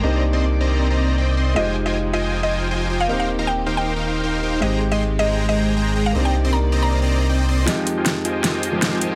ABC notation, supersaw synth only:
X:1
M:4/4
L:1/16
Q:"Swing 16ths" 1/4=157
K:Fdor
V:1 name="Supersaw synth"
[Ccdeb]2 z [Ccdec'] z2 [Ccdeb]3 [Ccdeb]3 [Ccdeg]2 [Ccdec']2 | [Fcega]2 z [Fcega] z2 [Fcega]3 [Fcega]3 [Fcega]2 [Fcega]2 | [EBcfg]2 z [EBcfb] z2 [EBcfg]3 [EBcfg]3 [EBcfg]2 [EBcfg]2 | [A,Acgb]2 z [A,Acgc'] z2 [A,Acgb]3 [A,Acgb]3 [A,Acgb]2 [A,Acgb]2 |
[Ccdeb]2 z [Ccdec'] z2 [Ccdeb]3 [Ccdeb]3 [Ccdeg]2 [Ccdec']2 | [Fcega]2 z [Fcega] z2 [Fcega]3 [Fcega]3 [Fcega]2 [Fcega]2 |]